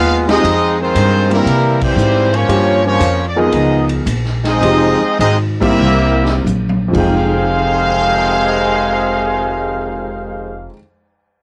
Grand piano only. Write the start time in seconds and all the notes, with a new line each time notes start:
0.28 G#3 C4 D#4 F4 G4
1.30 G3 A#3 C4 E4 G4
2.48 G3 A#3 C#4 F4 G4
3.36 F3 B3 D#4 G#4 A#4
4.61 F3 G#3 C4 D#4 G4
5.60 G3 A#3 C4 E4 G4
6.88 F2 F3
6.94 G#3 D#4
7.00 G5